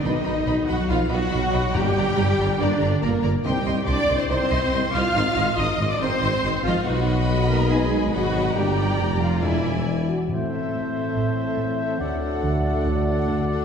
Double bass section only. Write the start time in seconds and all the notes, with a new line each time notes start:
0.04 B1
0.25 B1
0.47 B1
0.69 B1
0.91 B1
1.11 B1
1.33 B1
1.54 B1
1.76 G1
1.97 G1
2.18 G1
2.39 G1
2.60 G1
2.81 G1
3.03 G1
3.24 G1
3.46 C2
3.67 C2
3.88 C2
4.09 C2
4.30 C2
4.51 C2
4.73 C2
4.94 C2
5.15 G#1
5.37 G#1
5.58 G#1
5.79 G#1
6.01 G#1
6.22 G#1
6.44 G#1
6.64 G#1
6.86 B1
8.13 G#1
8.55 G1
8.99 F1
9.43 E1
10.29 A1
10.73 A1
11.15 A1
11.57 A1
12.01 D2
12.42 D2
12.84 D2
13.27 D2